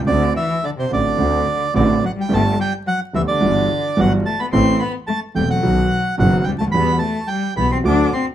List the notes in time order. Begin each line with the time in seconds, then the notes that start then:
0.07 D2 D3 A3 C4 F#4 D5
0.36 E3 E5
0.63 D3 D5
0.78 C3 C5
0.91 A1 A2 D3 A3 C4 F#4 D5
1.18 D2 D3 A3 C4 F#4
1.74 A1 A2 D3 A3 C4 F#4 D5
2.03 F#3 F#5
2.17 G3
2.21 G5
2.29 G1 G2 D3 G3 A3 B3 G4
2.34 A5
2.58 G3 G5
2.87 F#3 F#5
3.13 D2 D3 E3 G3 B3 G4 E5
3.28 D3 D5
3.40 G1 G2 E3 G3 B3 F#4
3.97 G1 G2 E3 F#3 G3 B3 F#4 F#5
4.26 A3 A5
4.40 B3 B5
4.52 A1 A2 E3 A3 C4 A4 C6
4.79 B3 B5
5.07 A3 A5
5.35 E1 E2 E3 G3 A3 C4 A4 G5
5.50 F#3 F#5
5.63 B1 B2 D#3 F#3 B3 F#4
6.18 F#1 F#2 D#3 F#3 B3 F#4 F#5
6.44 D2 G3 G5
6.53 C#2
6.58 D2 A3 A5
6.67 D#2
6.72 E2 E3 G3 B3 F#4 B5
6.99 A3 A5
7.28 G3 G5
7.56 B1 B2 E3 G3 B3 F#4 B5
7.72 C4 C6
7.84 D2 D3 F#3 A3 D4 F#4 D6
8.13 C4 C6